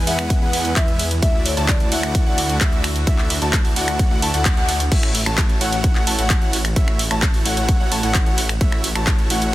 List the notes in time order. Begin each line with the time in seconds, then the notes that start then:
Already playing: E3 E4 G#4 B4
0.07 E2 G#3 B3 E4 B4 E5 F#5, open hi-hat, ride
0.19 finger snap, closed hi-hat
0.30 kick, closed hi-hat, ride
0.42 E2 G#3 B3 E4 B4 F#5
0.53 F#5, open hi-hat, ride
0.65 closed hi-hat
0.76 E2 G#3 B3 E4 B4 E5, kick, clap, closed hi-hat, ride
0.88 closed hi-hat
0.99 open hi-hat, ride
1.11 closed hi-hat
1.22 D2 D3 A3 D4 E4 F#4 D5 E5, kick, closed hi-hat, ride
1.46 C#5, open hi-hat, ride
1.57 D2 A3 E4 F#4 D5 A5, closed hi-hat
1.68 D5, kick, clap, closed hi-hat, ride
1.80 closed hi-hat
1.92 D2 A3 E4 F#4 D5 E5 F#5, open hi-hat, ride
2.03 finger snap, closed hi-hat
2.15 kick, closed hi-hat, ride
2.26 D2 A3 E4 F#4 D5 F#5
2.38 open hi-hat, ride
2.49 closed hi-hat
2.61 A3 E4 E5, kick, clap, closed hi-hat, ride
2.73 closed hi-hat
2.84 finger snap, open hi-hat, ride
2.96 closed hi-hat
3.07 D2 A3 E4 F#4 D5 E5, kick, closed hi-hat, ride
3.18 clap
3.30 open hi-hat, ride
3.42 D2 A3 E4 F#4 D5 A5, closed hi-hat
3.53 kick, clap, closed hi-hat, ride
3.65 open hi-hat
3.76 D2 A3 E4 F#4 D5 F#5, open hi-hat, ride
3.88 finger snap, closed hi-hat
3.99 kick, closed hi-hat, ride
4.11 D2 A3 E4 F#4 D5 F#5
4.22 D2 A3 E4 F#4 D5 A5, open hi-hat, ride
4.34 D2 A3 E4 F#4 D5 F#5, closed hi-hat
4.45 kick, clap, closed hi-hat, ride
4.57 D2 A3 E4 F#4 D5 F#5, closed hi-hat
4.69 open hi-hat, ride
4.80 closed hi-hat
4.92 A1 A3 E4 F#4 C#5 E5, kick, closed hi-hat, crash, ride
5.03 finger snap
5.15 open hi-hat, ride
5.26 A1 A3 E4 F#4 C#5 A5, finger snap, closed hi-hat
5.38 kick, clap, closed hi-hat, ride
5.49 closed hi-hat
5.61 A1 A3 E4 F#4 C#5 F#5, open hi-hat, ride
5.72 closed hi-hat
5.84 kick, closed hi-hat, ride
5.95 A1 A3 E4 F#4 C#5 F#5, clap
6.07 A1 A3 E4 F#4 C#5 A5, open hi-hat, ride
6.18 A1 A3 E4 F#4 C#5 F#5, closed hi-hat
6.30 kick, clap, closed hi-hat, ride
6.42 A1 A3 E4 F#4 C#5 F#5, closed hi-hat
6.53 open hi-hat, ride
6.65 finger snap, closed hi-hat
6.76 A3 E4 F#4 C#5 E5, kick, closed hi-hat, ride
6.88 finger snap
6.99 open hi-hat, ride
7.11 A1 A3 E4 F#4 C#5 A5, finger snap, closed hi-hat
7.22 kick, clap, closed hi-hat, ride
7.34 open hi-hat
7.45 A1 A3 E4 F#4 C#5 F#5, open hi-hat, ride
7.57 closed hi-hat
7.69 kick, closed hi-hat, ride
7.80 A1 A3 E4 F#4 C#5 F#5
7.92 A1 A3 E4 F#4 C#5 A5, open hi-hat, ride
8.03 A1 A3 E4 F#4 C#5 F#5, closed hi-hat
8.14 kick, clap, closed hi-hat, ride
8.26 A1 A3 E4 F#4 C#5 F#5, closed hi-hat
8.38 open hi-hat, ride
8.49 finger snap, closed hi-hat
8.61 A3 E4 F#4 C#5 E5, kick, closed hi-hat, ride
8.72 finger snap
8.84 open hi-hat, ride
8.95 A1 A3 E4 F#4 C#5 A5, finger snap, closed hi-hat
9.07 kick, clap, closed hi-hat, ride
9.19 closed hi-hat
9.30 A1 A3 E4 F#4 C#5 F#5, open hi-hat, ride
9.42 closed hi-hat